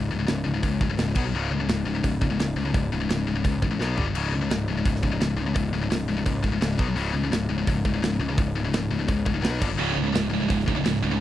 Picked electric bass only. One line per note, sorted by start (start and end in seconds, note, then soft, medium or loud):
0.12 0.27 C#1 medium
0.28 0.44 C#1 medium
0.47 0.62 C#1 loud
0.63 0.79 C#2 medium
0.81 0.96 C#1 medium
0.98 1.14 C#1 medium
1.16 1.32 B1 medium
1.34 1.49 C#1 medium
1.51 1.67 C#2 medium
1.69 1.84 C#1 medium
1.86 2.02 C#1 medium
2.04 2.20 C#1 medium
2.22 2.37 C#1 medium
2.38 2.54 C#1 loud
2.56 2.72 C#2 medium
2.74 2.90 C#1 medium
2.92 3.07 C#1 medium
3.09 3.25 C#1 medium
3.26 3.42 C#1 medium
3.45 3.60 C#2 medium
3.63 3.78 A1 medium
3.80 3.95 B1 medium
3.98 4.13 G1 medium
4.15 4.31 C#1 medium
4.33 4.49 C#2 medium
4.51 4.66 C#1 medium
4.68 4.84 C#1 loud
4.86 5.01 C#1 loud
5.03 5.19 C#1 medium
5.20 5.36 C#1 medium
5.38 5.54 C#2 medium
5.56 5.71 C#1 medium
5.73 5.89 C#1 loud
5.91 6.07 C#1 medium
6.08 6.24 C#1 medium
6.26 6.42 C#2 medium
6.44 6.60 C#1 medium
6.61 6.77 C#1 loud
6.79 6.95 B1 medium
6.97 7.13 C#1 loud
7.14 7.30 C#2 loud
7.32 7.48 C#1 medium
7.50 7.66 C#1 medium
7.67 7.83 C#1 medium
7.85 8.01 C#1 medium
8.02 8.18 C#1 medium
8.20 8.36 C#2 medium
8.38 8.54 C#1 loud
8.55 8.71 C#1 medium
8.73 8.89 C#1 medium
8.91 9.07 C#1 medium
9.08 9.24 C#2 loud
9.26 9.45 C#1 medium
9.44 9.60 B1 medium
9.62 9.78 G1 medium
9.79 9.95 C#1 medium
9.97 10.13 C#2 medium
10.15 10.31 C#1 medium
10.33 10.48 C#1 medium
10.50 10.66 C#1 medium
10.68 10.83 C#1 medium
10.86 11.01 C#1 medium
11.03 11.19 C#2 medium